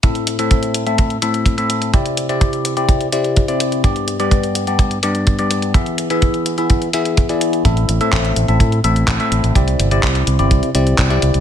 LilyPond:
<<
  \new Staff \with { instrumentName = "Tine electric piano" } { \time 4/4 \key a \minor \tempo 4 = 126 <a, c' e' a' e''>8. <a, c' e' a' e''>4 <a, c' e' a' e''>8. <a, c' e' a' e''>8. <a, c' e' a' e''>8. | <c c' e' g' d''>8. <c c' e' g' d''>4 <c c' e' g' d''>8. <c c' e' g' d''>8. <c c' e' g' d''>8. | <g, b d' g' d''>8. <g, b d' g' d''>4 <g, b d' g' d''>8. <g, b d' g' d''>8. <g, b d' g' d''>8. | <e b e' gis' e''>8. <e b e' gis' e''>4 <e b e' gis' e''>8. <e b e' gis' e''>8. <e b e' gis' d''>8. |
<a, c' e' a' e''>8. <a, c' e' a' e''>4 <a, c' e' a' e''>8. <a, c' e' a' e''>8. <a, c' e' a' e''>8. | <c c' e' g' d''>8. <c c' e' g' d''>4 <c c' e' g' d''>8. <c c' e' g' d''>8. <c c' e' g' d''>8. | }
  \new Staff \with { instrumentName = "Fingered electric bass" } { \clef bass \time 4/4 \key a \minor r1 | r1 | r1 | r1 |
a,,8 a,,16 r16 a,,8 a,,16 a,,16 a,8 a,,8 a,,16 r16 a,,16 a,,16 | c,8 g,,8 c,8 c,16 g,,16 c,16 r16 c,8 c,8 c,16 c,16 | }
  \new DrumStaff \with { instrumentName = "Drums" } \drummode { \time 4/4 <hh bd>16 hh16 hh16 hh16 <hh bd>16 hh16 hh16 hh16 <hh bd>16 hh16 hh16 hh16 <hh bd>16 hh16 hh16 hh16 | <hh bd>16 hh16 hh16 hh16 <hh bd>16 hh16 hh16 hh16 <hh bd>16 hh16 hh16 hh16 <hh bd>16 hh16 hh16 hh16 | <hh bd>16 hh16 hh16 hh16 <hh bd>16 hh16 hh16 hh16 <hh bd>16 hh16 hh16 hh16 <hh bd>16 hh16 hh16 hh16 | <hh bd>16 hh16 hh16 hh16 <hh bd>16 hh16 hh16 hh16 <hh bd>16 hh16 hh16 hh16 <hh bd>16 hh16 hh16 hh16 |
<hh bd>16 hh16 hh16 hh16 <hc hh bd>16 hh16 hh16 hh16 <hh bd>16 hh16 hh16 hh16 <hc hh bd>16 hh16 hh16 hh16 | <hh bd>16 hh16 hh16 hh16 <hc hh bd>16 hh16 hh16 hh16 <hh bd>16 hh16 hh16 hh16 <hc hh bd>16 hh16 hh16 hh16 | }
>>